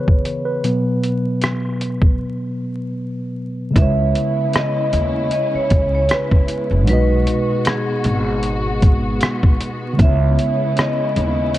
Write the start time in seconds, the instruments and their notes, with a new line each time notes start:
Already playing: tine electric piano C#3 E3 B3 G#4 B4 C#5
0.08 kick
0.25 closed hi-hat
0.45 tine electric piano B4
0.64 tine electric piano B2 F#3 B3, closed hi-hat
1.03 closed hi-hat
1.42 cross-stick, closed hi-hat
1.81 closed hi-hat
2.02 kick
3.71 tine electric piano C#3 G#3
3.76 upright bass C#2, string section C#3 G#3 B3 C#4 E4, tine electric piano E4 B4, vibraphone E5, kick, closed hi-hat
3.82 tine electric piano C#5
4.15 closed hi-hat
4.53 vibraphone D#5, cross-stick, closed hi-hat
4.93 upright bass D#2, closed hi-hat
5.31 vibraphone D#5, closed hi-hat
5.54 vibraphone C#5, muted upright bass stroke
5.70 upright bass C#2, kick, closed hi-hat
5.95 vibraphone C#5
6.09 vibraphone B4, cross-stick, closed hi-hat
6.31 kick
6.48 closed hi-hat
6.71 upright bass F#1
6.82 tine electric piano A#2 G#3
6.87 upright bass B1, tine electric piano B2 D#4 F#4, string section F#4, vibraphone B4, closed hi-hat
6.93 tine electric piano D#5
7.27 closed hi-hat
7.65 vibraphone G#4, cross-stick, closed hi-hat
8.04 upright bass G#1, closed hi-hat
8.43 closed hi-hat
8.82 kick, closed hi-hat
9.21 cross-stick, closed hi-hat
9.43 kick
9.60 closed hi-hat
9.93 tine electric piano C#3 G#3
9.99 upright bass C#2, string section C#3 C#4 E4, tine electric piano B3 E4, vibraphone E5, kick, closed hi-hat
10.04 tine electric piano C#5
10.39 closed hi-hat
10.77 vibraphone D#5, cross-stick, closed hi-hat
11.16 upright bass D#2, closed hi-hat
11.54 closed hi-hat